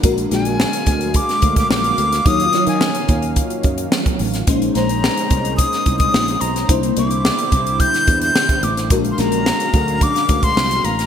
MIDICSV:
0, 0, Header, 1, 6, 480
1, 0, Start_track
1, 0, Tempo, 554529
1, 29, Time_signature, 4, 2, 24, 8
1, 9576, End_track
2, 0, Start_track
2, 0, Title_t, "Flute"
2, 0, Program_c, 0, 73
2, 293, Note_on_c, 0, 80, 94
2, 1004, Note_on_c, 0, 86, 101
2, 1017, Note_off_c, 0, 80, 0
2, 1357, Note_off_c, 0, 86, 0
2, 1371, Note_on_c, 0, 86, 96
2, 1473, Note_off_c, 0, 86, 0
2, 1487, Note_on_c, 0, 86, 106
2, 1970, Note_on_c, 0, 87, 112
2, 1983, Note_off_c, 0, 86, 0
2, 2317, Note_off_c, 0, 87, 0
2, 2322, Note_on_c, 0, 80, 86
2, 3002, Note_off_c, 0, 80, 0
2, 4113, Note_on_c, 0, 82, 93
2, 4797, Note_off_c, 0, 82, 0
2, 4820, Note_on_c, 0, 87, 104
2, 5160, Note_off_c, 0, 87, 0
2, 5182, Note_on_c, 0, 87, 112
2, 5547, Note_on_c, 0, 82, 88
2, 5560, Note_off_c, 0, 87, 0
2, 5789, Note_off_c, 0, 82, 0
2, 6048, Note_on_c, 0, 86, 94
2, 6753, Note_on_c, 0, 91, 107
2, 6766, Note_off_c, 0, 86, 0
2, 7111, Note_off_c, 0, 91, 0
2, 7118, Note_on_c, 0, 91, 111
2, 7476, Note_on_c, 0, 86, 87
2, 7489, Note_off_c, 0, 91, 0
2, 7712, Note_off_c, 0, 86, 0
2, 7887, Note_on_c, 0, 84, 66
2, 7956, Note_on_c, 0, 82, 104
2, 7969, Note_off_c, 0, 84, 0
2, 8680, Note_on_c, 0, 86, 109
2, 8693, Note_off_c, 0, 82, 0
2, 9035, Note_on_c, 0, 84, 107
2, 9048, Note_off_c, 0, 86, 0
2, 9390, Note_on_c, 0, 82, 109
2, 9403, Note_off_c, 0, 84, 0
2, 9576, Note_off_c, 0, 82, 0
2, 9576, End_track
3, 0, Start_track
3, 0, Title_t, "FM electric piano"
3, 0, Program_c, 1, 5
3, 0, Control_c, 1, 64, 127
3, 31, Note_on_c, 1, 56, 87
3, 34, Note_on_c, 1, 62, 82
3, 37, Note_on_c, 1, 66, 83
3, 40, Note_on_c, 1, 70, 95
3, 41, Control_c, 1, 64, 0
3, 165, Control_c, 1, 64, 127
3, 249, Note_off_c, 1, 56, 0
3, 251, Note_off_c, 1, 62, 0
3, 252, Note_off_c, 1, 66, 0
3, 254, Note_off_c, 1, 70, 0
3, 272, Note_on_c, 1, 56, 79
3, 276, Note_on_c, 1, 62, 69
3, 278, Note_on_c, 1, 66, 70
3, 283, Note_on_c, 1, 70, 80
3, 1146, Note_off_c, 1, 56, 0
3, 1148, Note_off_c, 1, 62, 0
3, 1149, Note_off_c, 1, 66, 0
3, 1152, Note_off_c, 1, 70, 0
3, 1960, Note_on_c, 1, 63, 68
3, 1961, Note_on_c, 1, 54, 72
3, 1962, Control_c, 1, 64, 0
3, 1962, Note_on_c, 1, 65, 72
3, 1968, Note_on_c, 1, 73, 86
3, 2111, Control_c, 1, 64, 127
3, 2174, Note_off_c, 1, 54, 0
3, 2174, Note_off_c, 1, 63, 0
3, 2175, Note_off_c, 1, 65, 0
3, 2178, Note_off_c, 1, 73, 0
3, 2196, Note_on_c, 1, 54, 78
3, 2198, Note_on_c, 1, 63, 66
3, 2202, Note_on_c, 1, 65, 67
3, 2202, Note_on_c, 1, 73, 82
3, 3068, Note_off_c, 1, 54, 0
3, 3070, Note_off_c, 1, 63, 0
3, 3071, Note_off_c, 1, 65, 0
3, 3071, Note_off_c, 1, 73, 0
3, 3875, Note_on_c, 1, 56, 86
3, 3881, Note_on_c, 1, 61, 80
3, 3881, Note_on_c, 1, 63, 80
3, 3884, Control_c, 1, 64, 0
3, 3886, Note_on_c, 1, 72, 94
3, 4037, Control_c, 1, 64, 127
3, 4092, Note_off_c, 1, 56, 0
3, 4095, Note_off_c, 1, 61, 0
3, 4095, Note_off_c, 1, 63, 0
3, 4097, Note_off_c, 1, 72, 0
3, 4116, Note_on_c, 1, 56, 69
3, 4119, Note_on_c, 1, 61, 66
3, 4123, Note_on_c, 1, 72, 81
3, 4125, Note_on_c, 1, 63, 66
3, 4988, Note_off_c, 1, 56, 0
3, 4990, Note_off_c, 1, 61, 0
3, 4992, Note_off_c, 1, 72, 0
3, 4993, Note_off_c, 1, 63, 0
3, 5791, Note_on_c, 1, 58, 76
3, 5791, Note_on_c, 1, 62, 65
3, 5795, Note_on_c, 1, 64, 68
3, 5800, Note_on_c, 1, 72, 84
3, 5803, Control_c, 1, 64, 0
3, 5970, Control_c, 1, 64, 127
3, 6010, Note_off_c, 1, 58, 0
3, 6010, Note_off_c, 1, 62, 0
3, 6012, Note_off_c, 1, 64, 0
3, 6014, Note_off_c, 1, 72, 0
3, 6031, Note_on_c, 1, 58, 75
3, 6031, Note_on_c, 1, 62, 67
3, 6034, Note_on_c, 1, 64, 68
3, 6037, Note_on_c, 1, 72, 79
3, 6905, Note_off_c, 1, 58, 0
3, 6905, Note_off_c, 1, 62, 0
3, 6907, Note_off_c, 1, 64, 0
3, 6908, Note_off_c, 1, 72, 0
3, 7706, Note_on_c, 1, 56, 73
3, 7710, Note_on_c, 1, 62, 69
3, 7713, Note_on_c, 1, 66, 68
3, 7717, Note_on_c, 1, 70, 83
3, 7720, Control_c, 1, 64, 0
3, 7854, Control_c, 1, 64, 127
3, 7926, Note_off_c, 1, 56, 0
3, 7928, Note_off_c, 1, 62, 0
3, 7930, Note_off_c, 1, 66, 0
3, 7932, Note_off_c, 1, 70, 0
3, 7948, Note_on_c, 1, 56, 78
3, 7950, Note_on_c, 1, 61, 56
3, 7952, Note_on_c, 1, 66, 65
3, 7956, Note_on_c, 1, 70, 84
3, 8006, Note_off_c, 1, 61, 0
3, 8008, Note_on_c, 1, 62, 72
3, 8823, Note_off_c, 1, 56, 0
3, 8825, Note_off_c, 1, 66, 0
3, 8827, Note_off_c, 1, 70, 0
3, 8853, Note_off_c, 1, 62, 0
3, 9576, End_track
4, 0, Start_track
4, 0, Title_t, "Analog synth pad"
4, 0, Program_c, 2, 89
4, 0, Note_on_c, 2, 50, 81
4, 0, Note_on_c, 2, 58, 71
4, 33, Note_on_c, 2, 56, 75
4, 35, Note_on_c, 2, 77, 85
4, 38, Note_on_c, 2, 54, 68
4, 1910, Note_off_c, 2, 50, 0
4, 1933, Note_off_c, 2, 56, 0
4, 1952, Note_on_c, 2, 51, 79
4, 1953, Note_on_c, 2, 61, 73
4, 3839, Note_off_c, 2, 77, 0
4, 3840, Note_off_c, 2, 54, 0
4, 3853, Note_off_c, 2, 51, 0
4, 3853, Note_off_c, 2, 61, 0
4, 3868, Note_on_c, 2, 63, 88
4, 3870, Note_on_c, 2, 72, 73
4, 3871, Note_on_c, 2, 61, 74
4, 3872, Note_on_c, 2, 56, 75
4, 5770, Note_off_c, 2, 63, 0
4, 5771, Note_off_c, 2, 61, 0
4, 5772, Note_off_c, 2, 56, 0
4, 5786, Note_on_c, 2, 50, 79
4, 5788, Note_on_c, 2, 64, 90
4, 5790, Note_on_c, 2, 55, 74
4, 7675, Note_off_c, 2, 72, 0
4, 7689, Note_off_c, 2, 64, 0
4, 7690, Note_off_c, 2, 55, 0
4, 7705, Note_on_c, 2, 77, 88
4, 7708, Note_on_c, 2, 54, 76
4, 7709, Note_on_c, 2, 56, 70
4, 9576, Note_off_c, 2, 50, 0
4, 9576, Note_off_c, 2, 54, 0
4, 9576, Note_off_c, 2, 56, 0
4, 9576, Note_off_c, 2, 58, 0
4, 9576, Note_off_c, 2, 77, 0
4, 9576, End_track
5, 0, Start_track
5, 0, Title_t, "Fretless electric bass"
5, 0, Program_c, 3, 35
5, 31, Note_on_c, 3, 34, 100
5, 215, Note_off_c, 3, 34, 0
5, 271, Note_on_c, 3, 34, 94
5, 548, Note_off_c, 3, 34, 0
5, 752, Note_on_c, 3, 38, 90
5, 1029, Note_off_c, 3, 38, 0
5, 1232, Note_on_c, 3, 38, 90
5, 1416, Note_off_c, 3, 38, 0
5, 1473, Note_on_c, 3, 34, 97
5, 1657, Note_off_c, 3, 34, 0
5, 1712, Note_on_c, 3, 38, 92
5, 1896, Note_off_c, 3, 38, 0
5, 1951, Note_on_c, 3, 39, 101
5, 2136, Note_off_c, 3, 39, 0
5, 2309, Note_on_c, 3, 51, 91
5, 2495, Note_off_c, 3, 51, 0
5, 2670, Note_on_c, 3, 39, 82
5, 2947, Note_off_c, 3, 39, 0
5, 3151, Note_on_c, 3, 42, 87
5, 3336, Note_off_c, 3, 42, 0
5, 3633, Note_on_c, 3, 33, 81
5, 3817, Note_off_c, 3, 33, 0
5, 3873, Note_on_c, 3, 34, 101
5, 4057, Note_off_c, 3, 34, 0
5, 4115, Note_on_c, 3, 34, 97
5, 4390, Note_off_c, 3, 34, 0
5, 4594, Note_on_c, 3, 36, 93
5, 4870, Note_off_c, 3, 36, 0
5, 5076, Note_on_c, 3, 36, 92
5, 5259, Note_off_c, 3, 36, 0
5, 5313, Note_on_c, 3, 34, 95
5, 5497, Note_off_c, 3, 34, 0
5, 5553, Note_on_c, 3, 35, 85
5, 5737, Note_off_c, 3, 35, 0
5, 5793, Note_on_c, 3, 36, 109
5, 5976, Note_off_c, 3, 36, 0
5, 6034, Note_on_c, 3, 36, 95
5, 6309, Note_off_c, 3, 36, 0
5, 6510, Note_on_c, 3, 36, 91
5, 6787, Note_off_c, 3, 36, 0
5, 6990, Note_on_c, 3, 40, 92
5, 7175, Note_off_c, 3, 40, 0
5, 7468, Note_on_c, 3, 33, 86
5, 7709, Note_off_c, 3, 33, 0
5, 7709, Note_on_c, 3, 34, 102
5, 7894, Note_off_c, 3, 34, 0
5, 7950, Note_on_c, 3, 34, 102
5, 8226, Note_off_c, 3, 34, 0
5, 8428, Note_on_c, 3, 38, 98
5, 8705, Note_off_c, 3, 38, 0
5, 8910, Note_on_c, 3, 38, 93
5, 9094, Note_off_c, 3, 38, 0
5, 9146, Note_on_c, 3, 36, 99
5, 9332, Note_off_c, 3, 36, 0
5, 9385, Note_on_c, 3, 33, 89
5, 9571, Note_off_c, 3, 33, 0
5, 9576, End_track
6, 0, Start_track
6, 0, Title_t, "Drums"
6, 29, Note_on_c, 9, 42, 103
6, 31, Note_on_c, 9, 36, 122
6, 116, Note_off_c, 9, 42, 0
6, 117, Note_off_c, 9, 36, 0
6, 152, Note_on_c, 9, 42, 55
6, 239, Note_off_c, 9, 42, 0
6, 271, Note_on_c, 9, 42, 68
6, 279, Note_on_c, 9, 38, 36
6, 357, Note_off_c, 9, 42, 0
6, 366, Note_off_c, 9, 38, 0
6, 390, Note_on_c, 9, 42, 54
6, 477, Note_off_c, 9, 42, 0
6, 517, Note_on_c, 9, 38, 127
6, 603, Note_off_c, 9, 38, 0
6, 633, Note_on_c, 9, 42, 57
6, 719, Note_off_c, 9, 42, 0
6, 747, Note_on_c, 9, 42, 76
6, 752, Note_on_c, 9, 36, 95
6, 834, Note_off_c, 9, 42, 0
6, 838, Note_off_c, 9, 36, 0
6, 871, Note_on_c, 9, 42, 45
6, 958, Note_off_c, 9, 42, 0
6, 987, Note_on_c, 9, 42, 91
6, 992, Note_on_c, 9, 36, 86
6, 1074, Note_off_c, 9, 42, 0
6, 1078, Note_off_c, 9, 36, 0
6, 1116, Note_on_c, 9, 42, 43
6, 1121, Note_on_c, 9, 38, 38
6, 1203, Note_off_c, 9, 42, 0
6, 1207, Note_off_c, 9, 38, 0
6, 1228, Note_on_c, 9, 42, 73
6, 1234, Note_on_c, 9, 36, 93
6, 1315, Note_off_c, 9, 42, 0
6, 1321, Note_off_c, 9, 36, 0
6, 1352, Note_on_c, 9, 42, 58
6, 1354, Note_on_c, 9, 36, 100
6, 1439, Note_off_c, 9, 42, 0
6, 1440, Note_off_c, 9, 36, 0
6, 1476, Note_on_c, 9, 38, 117
6, 1563, Note_off_c, 9, 38, 0
6, 1595, Note_on_c, 9, 42, 51
6, 1681, Note_off_c, 9, 42, 0
6, 1713, Note_on_c, 9, 42, 70
6, 1800, Note_off_c, 9, 42, 0
6, 1838, Note_on_c, 9, 42, 58
6, 1842, Note_on_c, 9, 38, 37
6, 1925, Note_off_c, 9, 42, 0
6, 1928, Note_off_c, 9, 38, 0
6, 1954, Note_on_c, 9, 36, 127
6, 1954, Note_on_c, 9, 42, 98
6, 2040, Note_off_c, 9, 36, 0
6, 2041, Note_off_c, 9, 42, 0
6, 2075, Note_on_c, 9, 42, 52
6, 2162, Note_off_c, 9, 42, 0
6, 2188, Note_on_c, 9, 42, 74
6, 2197, Note_on_c, 9, 38, 34
6, 2275, Note_off_c, 9, 42, 0
6, 2283, Note_off_c, 9, 38, 0
6, 2308, Note_on_c, 9, 42, 56
6, 2394, Note_off_c, 9, 42, 0
6, 2431, Note_on_c, 9, 38, 127
6, 2518, Note_off_c, 9, 38, 0
6, 2549, Note_on_c, 9, 42, 52
6, 2635, Note_off_c, 9, 42, 0
6, 2669, Note_on_c, 9, 42, 76
6, 2673, Note_on_c, 9, 36, 94
6, 2756, Note_off_c, 9, 42, 0
6, 2760, Note_off_c, 9, 36, 0
6, 2791, Note_on_c, 9, 42, 46
6, 2878, Note_off_c, 9, 42, 0
6, 2909, Note_on_c, 9, 42, 90
6, 2913, Note_on_c, 9, 36, 89
6, 2996, Note_off_c, 9, 42, 0
6, 2999, Note_off_c, 9, 36, 0
6, 3032, Note_on_c, 9, 42, 43
6, 3119, Note_off_c, 9, 42, 0
6, 3145, Note_on_c, 9, 42, 76
6, 3154, Note_on_c, 9, 36, 90
6, 3232, Note_off_c, 9, 42, 0
6, 3240, Note_off_c, 9, 36, 0
6, 3270, Note_on_c, 9, 42, 59
6, 3356, Note_off_c, 9, 42, 0
6, 3392, Note_on_c, 9, 38, 113
6, 3478, Note_off_c, 9, 38, 0
6, 3513, Note_on_c, 9, 42, 53
6, 3514, Note_on_c, 9, 36, 94
6, 3599, Note_off_c, 9, 42, 0
6, 3601, Note_off_c, 9, 36, 0
6, 3628, Note_on_c, 9, 46, 66
6, 3715, Note_off_c, 9, 46, 0
6, 3752, Note_on_c, 9, 42, 53
6, 3756, Note_on_c, 9, 38, 36
6, 3839, Note_off_c, 9, 42, 0
6, 3843, Note_off_c, 9, 38, 0
6, 3871, Note_on_c, 9, 42, 109
6, 3874, Note_on_c, 9, 36, 124
6, 3957, Note_off_c, 9, 42, 0
6, 3961, Note_off_c, 9, 36, 0
6, 3997, Note_on_c, 9, 42, 53
6, 4084, Note_off_c, 9, 42, 0
6, 4113, Note_on_c, 9, 42, 70
6, 4121, Note_on_c, 9, 38, 35
6, 4200, Note_off_c, 9, 42, 0
6, 4208, Note_off_c, 9, 38, 0
6, 4235, Note_on_c, 9, 42, 57
6, 4321, Note_off_c, 9, 42, 0
6, 4362, Note_on_c, 9, 38, 124
6, 4448, Note_off_c, 9, 38, 0
6, 4477, Note_on_c, 9, 42, 54
6, 4564, Note_off_c, 9, 42, 0
6, 4591, Note_on_c, 9, 42, 77
6, 4594, Note_on_c, 9, 36, 93
6, 4678, Note_off_c, 9, 42, 0
6, 4681, Note_off_c, 9, 36, 0
6, 4716, Note_on_c, 9, 42, 49
6, 4803, Note_off_c, 9, 42, 0
6, 4834, Note_on_c, 9, 36, 91
6, 4835, Note_on_c, 9, 42, 92
6, 4921, Note_off_c, 9, 36, 0
6, 4922, Note_off_c, 9, 42, 0
6, 4957, Note_on_c, 9, 42, 44
6, 4961, Note_on_c, 9, 38, 37
6, 5044, Note_off_c, 9, 42, 0
6, 5048, Note_off_c, 9, 38, 0
6, 5071, Note_on_c, 9, 42, 77
6, 5074, Note_on_c, 9, 36, 90
6, 5158, Note_off_c, 9, 42, 0
6, 5161, Note_off_c, 9, 36, 0
6, 5190, Note_on_c, 9, 42, 59
6, 5193, Note_on_c, 9, 36, 102
6, 5277, Note_off_c, 9, 42, 0
6, 5279, Note_off_c, 9, 36, 0
6, 5318, Note_on_c, 9, 38, 108
6, 5404, Note_off_c, 9, 38, 0
6, 5436, Note_on_c, 9, 42, 54
6, 5522, Note_off_c, 9, 42, 0
6, 5550, Note_on_c, 9, 42, 64
6, 5636, Note_off_c, 9, 42, 0
6, 5678, Note_on_c, 9, 42, 54
6, 5681, Note_on_c, 9, 38, 37
6, 5764, Note_off_c, 9, 42, 0
6, 5768, Note_off_c, 9, 38, 0
6, 5791, Note_on_c, 9, 36, 121
6, 5791, Note_on_c, 9, 42, 103
6, 5878, Note_off_c, 9, 36, 0
6, 5878, Note_off_c, 9, 42, 0
6, 5913, Note_on_c, 9, 42, 55
6, 5999, Note_off_c, 9, 42, 0
6, 6029, Note_on_c, 9, 42, 71
6, 6116, Note_off_c, 9, 42, 0
6, 6151, Note_on_c, 9, 42, 56
6, 6237, Note_off_c, 9, 42, 0
6, 6275, Note_on_c, 9, 38, 126
6, 6362, Note_off_c, 9, 38, 0
6, 6392, Note_on_c, 9, 42, 56
6, 6479, Note_off_c, 9, 42, 0
6, 6508, Note_on_c, 9, 42, 72
6, 6510, Note_on_c, 9, 36, 94
6, 6595, Note_off_c, 9, 42, 0
6, 6597, Note_off_c, 9, 36, 0
6, 6635, Note_on_c, 9, 42, 49
6, 6722, Note_off_c, 9, 42, 0
6, 6750, Note_on_c, 9, 36, 91
6, 6752, Note_on_c, 9, 42, 92
6, 6836, Note_off_c, 9, 36, 0
6, 6838, Note_off_c, 9, 42, 0
6, 6873, Note_on_c, 9, 42, 45
6, 6877, Note_on_c, 9, 38, 35
6, 6959, Note_off_c, 9, 42, 0
6, 6964, Note_off_c, 9, 38, 0
6, 6988, Note_on_c, 9, 42, 76
6, 6991, Note_on_c, 9, 36, 92
6, 7074, Note_off_c, 9, 42, 0
6, 7078, Note_off_c, 9, 36, 0
6, 7110, Note_on_c, 9, 42, 60
6, 7197, Note_off_c, 9, 42, 0
6, 7233, Note_on_c, 9, 38, 115
6, 7319, Note_off_c, 9, 38, 0
6, 7349, Note_on_c, 9, 42, 57
6, 7350, Note_on_c, 9, 36, 92
6, 7435, Note_off_c, 9, 42, 0
6, 7436, Note_off_c, 9, 36, 0
6, 7468, Note_on_c, 9, 42, 66
6, 7555, Note_off_c, 9, 42, 0
6, 7594, Note_on_c, 9, 42, 56
6, 7598, Note_on_c, 9, 38, 34
6, 7680, Note_off_c, 9, 42, 0
6, 7684, Note_off_c, 9, 38, 0
6, 7707, Note_on_c, 9, 42, 104
6, 7708, Note_on_c, 9, 36, 125
6, 7793, Note_off_c, 9, 42, 0
6, 7794, Note_off_c, 9, 36, 0
6, 7829, Note_on_c, 9, 42, 51
6, 7916, Note_off_c, 9, 42, 0
6, 7946, Note_on_c, 9, 42, 70
6, 7954, Note_on_c, 9, 38, 35
6, 8032, Note_off_c, 9, 42, 0
6, 8041, Note_off_c, 9, 38, 0
6, 8066, Note_on_c, 9, 42, 54
6, 8152, Note_off_c, 9, 42, 0
6, 8191, Note_on_c, 9, 38, 127
6, 8278, Note_off_c, 9, 38, 0
6, 8310, Note_on_c, 9, 42, 56
6, 8397, Note_off_c, 9, 42, 0
6, 8426, Note_on_c, 9, 42, 80
6, 8428, Note_on_c, 9, 36, 95
6, 8513, Note_off_c, 9, 42, 0
6, 8515, Note_off_c, 9, 36, 0
6, 8551, Note_on_c, 9, 42, 47
6, 8637, Note_off_c, 9, 42, 0
6, 8666, Note_on_c, 9, 36, 90
6, 8666, Note_on_c, 9, 42, 96
6, 8753, Note_off_c, 9, 36, 0
6, 8753, Note_off_c, 9, 42, 0
6, 8793, Note_on_c, 9, 42, 43
6, 8797, Note_on_c, 9, 38, 37
6, 8880, Note_off_c, 9, 42, 0
6, 8884, Note_off_c, 9, 38, 0
6, 8905, Note_on_c, 9, 42, 78
6, 8908, Note_on_c, 9, 36, 96
6, 8992, Note_off_c, 9, 42, 0
6, 8995, Note_off_c, 9, 36, 0
6, 9025, Note_on_c, 9, 42, 60
6, 9027, Note_on_c, 9, 36, 94
6, 9111, Note_off_c, 9, 42, 0
6, 9113, Note_off_c, 9, 36, 0
6, 9151, Note_on_c, 9, 38, 108
6, 9237, Note_off_c, 9, 38, 0
6, 9269, Note_on_c, 9, 42, 57
6, 9355, Note_off_c, 9, 42, 0
6, 9388, Note_on_c, 9, 42, 70
6, 9474, Note_off_c, 9, 42, 0
6, 9512, Note_on_c, 9, 42, 54
6, 9516, Note_on_c, 9, 38, 37
6, 9576, Note_off_c, 9, 38, 0
6, 9576, Note_off_c, 9, 42, 0
6, 9576, End_track
0, 0, End_of_file